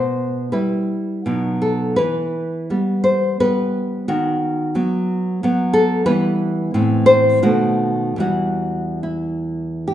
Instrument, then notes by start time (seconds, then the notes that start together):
nylon-string guitar
Already playing: B2 C5
0.52 G3 E4 B4
1.26 B2 F#3 D#4
1.62 A4
1.96 E3 B4
2.70 G3 B3
3.04 C5
3.40 G3 B3 B4
4.08 D#3 F#4
4.75 F#3 B3
5.43 F#3 B3
5.73 A4
6.06 E3 G3 B3 B4
6.74 A2 E3 C4
7.06 C5
7.42 B2 D#3 A3 F#4
8.16 E2 E3 G3 F#4
9.03 E4
9.88 G4